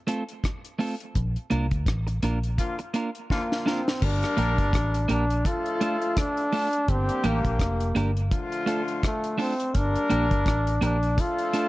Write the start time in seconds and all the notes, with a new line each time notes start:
0.07 A3 C4 F4 A4, closed hi-hat
0.29 closed hi-hat
0.44 kick, cross-stick, closed hi-hat
0.65 closed hi-hat
0.79 A3 C4 F4 A4, open hi-hat
1.00 closed hi-hat
1.15 A#1, kick, closed hi-hat
1.36 closed hi-hat
1.50 C2 A#3 D4 F4 A#4, closed hi-hat
1.71 D2, kick, closed hi-hat
1.86 A1, kick, cross-stick, closed hi-hat
2.07 muted clean electric guitar stroke, closed hi-hat
2.23 A#1 A#3 D4 F4 A#4, closed hi-hat
2.43 closed hi-hat
2.58 D3 F3 A#3 F4, kick, closed hi-hat
2.79 muted clean electric guitar stroke, closed hi-hat
2.94 A#3 D4 F4 A#4, closed hi-hat
3.15 closed hi-hat
3.30 D3 F3 A#3 F4, kick, snare
3.52 snare
3.66 A#3 C4 D4 F4 A#4, snare
3.88 snare
4.02 G1 G3 A#3 D4 A#4, kick, crash
4.23 cross-stick, closed hi-hat
4.37 A#1 A#3 D4 G4 A#4, closed hi-hat
4.58 G1, kick, closed hi-hat
4.73 A1, kick, cross-stick, closed hi-hat
4.94 closed hi-hat
5.08 A#1 A#3 D4 G4 A#4, closed hi-hat
5.30 closed hi-hat
5.45 F3 A3 D4 F4 A4, kick, closed hi-hat
5.66 closed hi-hat
5.81 A3 D4 F4 A4, closed hi-hat
6.02 closed hi-hat
6.17 D4, kick, cross-stick, closed hi-hat
6.37 closed hi-hat
6.53 A3 D4 F4 A4, open hi-hat
6.73 closed hi-hat
6.88 G1 D3 G3 A#3 C4 G4, kick, closed hi-hat
7.09 closed hi-hat
7.24 A1 A#3 D4 G4 A#4, closed hi-hat
7.45 A#1, kick, closed hi-hat
7.59 F1, kick, cross-stick, closed hi-hat
7.80 closed hi-hat
7.95 G1 A#3 D4 G4 A#4, closed hi-hat
8.17 closed hi-hat
8.31 D3 F3 A3 F4, kick, closed hi-hat
8.52 closed hi-hat
8.66 A3 D4 F4 A4, closed hi-hat
8.88 closed hi-hat
9.03 A3, kick, cross-stick, closed hi-hat
9.24 closed hi-hat
9.38 A3 C4 D4 F4 A4, open hi-hat
9.60 closed hi-hat
9.74 G1 G3 A#3 D4 A#4, kick, closed hi-hat
9.96 closed hi-hat
10.10 A#1 A#3 D4 G4 A#4, closed hi-hat
10.31 G1, kick, closed hi-hat
10.46 A1, kick, cross-stick, closed hi-hat
10.67 closed hi-hat
10.81 A#1 A#3 D4 G4 A#4, closed hi-hat
11.03 closed hi-hat
11.17 F3 A3 D4 F4 A4, kick, closed hi-hat
11.39 closed hi-hat
11.53 A3 D4 F4 A4, closed hi-hat